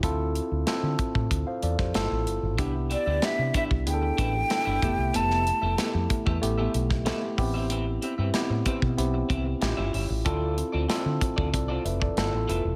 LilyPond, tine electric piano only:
\new Staff \with { instrumentName = "Tine electric piano" } { \time 4/4 \key d \dorian \tempo 4 = 94 << { r2 r16 <c'' f''>16 <a' d''>16 <g' c''>8 r8. | r1 | r1 | r1 |
r2 <a' d''>8 <b' e''>16 <a' d''>8 r8. | } \\ { <c' e' f' a'>4 <c' e' f' a'>4 r4 <b e' f' a'>4 | <b d' e' g'>4 <b d' e' g'>4 <b d' e' aes' a'>4 <b d' e' a'>8 <a b e' g'>8~ | <a b e' g'>4 <a b e' g'>4 <a b e' g'>4 <a b e' g'>8 <b c' e' g'>8~ | <b c' e' g'>4 <b c' e' g'>4 <b c' e' g'>4 <cis' e' f' g'>4 |
<c' e' f' a'>4 <c' e' f' a'>4 r4 <b e' f' a'>4 | } >> }